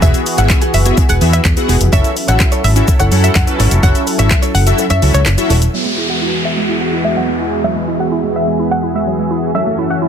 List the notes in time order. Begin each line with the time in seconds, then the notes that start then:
Already playing: E3 B3 F#4 G#4
0.02 E1 B3 E4 F#4 G#4 E5, kick, shaker
0.14 closed hi-hat, shaker
0.26 muted clean electric guitar stroke, open hi-hat, shaker
0.37 G#1 B3 E4 F#4 G#4 E5 F#5, closed hi-hat, shaker
0.50 kick, snare, clap, shaker
0.61 B3 F#4 G#4, closed hi-hat, shaker
0.73 F#1 E5, muted clean electric guitar stroke, open hi-hat, shaker
0.85 B3 E4 F#4 G#4 E5, muted clean electric guitar stroke, closed hi-hat, shaker
0.97 muted clean electric guitar stroke, kick, shaker
1.09 E1 B3 F#4 G#4 F#5, closed hi-hat, shaker
1.21 E2 B3 E4 F#4 G#4 E5, open hi-hat, shaker
1.33 E5, muted clean electric guitar stroke, closed hi-hat, shaker
1.45 E2, muted clean electric guitar stroke, kick, snare, clap, shaker
1.57 B3 E4 F#4 G#4 F#5, muted clean electric guitar stroke, closed hi-hat, shaker
1.68 E1 B3 F#4 G#4, open hi-hat, shaker
1.81 F1, muted clean electric guitar stroke, closed hi-hat, shaker
1.92 F#1 F#3 C#4 E4 F#4 A4 C#5 E5, kick, shaker
2.04 closed hi-hat, shaker
2.16 muted clean electric guitar stroke, open hi-hat, shaker
2.28 A1 C#4 E4 F#4 A4 C#5 E5 F#5, closed hi-hat, shaker
2.40 kick, snare, clap, shaker
2.52 E4 A4 C#5, closed hi-hat, shaker
2.64 G#1 E5, open hi-hat, shaker
2.76 C#4 E4 F#4 A4 E5, muted clean electric guitar stroke, closed hi-hat, shaker
2.88 muted clean electric guitar stroke, kick, shaker
2.99 F#1 E4 A4 C#5 F#5, closed hi-hat, shaker
3.11 F#2 C#4 E4 F#4 A4 C#5 F#5, open hi-hat, shaker
3.23 E5, muted clean electric guitar stroke, closed hi-hat, shaker
3.35 F#2 F#5, muted clean electric guitar stroke, kick, snare, clap, shaker
3.47 C#4 E4 F#4 A4 B4, muted clean electric guitar stroke, closed hi-hat, shaker
3.59 G#1 E4 A4 C#5, open hi-hat, shaker
3.71 F1, muted clean electric guitar stroke, closed hi-hat, shaker
3.83 C#4 E4 F#4 A4 C#5 E5 F#5, kick, shaker
3.95 closed hi-hat, shaker
4.07 muted clean electric guitar stroke, open hi-hat, shaker
4.19 G#1 C#4 E4 F#4 A4 C#5 E5, closed hi-hat, shaker
4.31 kick, snare, clap, shaker
4.42 E4 A4 C#5, closed hi-hat, shaker
4.54 F#1 F#5, muted clean electric guitar stroke, open hi-hat, shaker
4.66 C#4 E4 F#4 A4 E5, muted clean electric guitar stroke, closed hi-hat, shaker
4.78 muted clean electric guitar stroke, shaker
4.90 F#2 E4 A4 C#5 E5, closed hi-hat, shaker
5.02 C#2 C#4 E4 F#4 A4 C#5 E5, open hi-hat, shaker
5.14 C#2 C#5, muted clean electric guitar stroke, closed hi-hat, shaker
5.26 F#1, muted clean electric guitar stroke, snare, clap, shaker
5.38 C#4 E4 F#4 A4 E5, muted clean electric guitar stroke, closed hi-hat, shaker
5.50 D#1 E4 A4 C#5, open hi-hat, shaker
5.62 muted clean electric guitar stroke, closed hi-hat, shaker
5.73 E2 E3 F#3 G#3 B3 F#4 G#4 E5, downlifter
5.86 G#3
5.98 E4
6.09 F#4 F#5
6.21 E4
6.33 G#3
6.45 E5
6.57 G#3
6.69 E4
6.81 F#4 F#5
6.93 E4
7.05 G#3 E5
7.17 F#3 F#5
7.28 G#3
7.40 E4
7.64 F#3 G#4 E5
7.76 G#3
7.88 E4
8.00 F#4 F#5
8.12 E4
8.23 G#3
8.36 E5
8.47 G#3
8.59 E4
8.71 F#4 F#5
8.83 E4
8.95 G#3 E5
9.07 F#3
9.19 G#3
9.31 E4
9.54 F#2 F#3 A3 C#4 F#4 A4 E5
9.66 A3
9.78 E4
9.90 F#4 F#5
10.02 E4